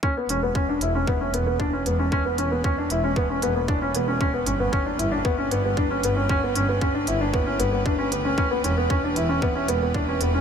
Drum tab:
HH |-x-x-x-x|-x-x-x-x|-x-x-x-x|-x-x-x-x|
BD |o-o-o-o-|o-o-o-o-|o-o-o-o-|o-o-o-o-|

HH |-x-x-x-x|
BD |o-o-o-o-|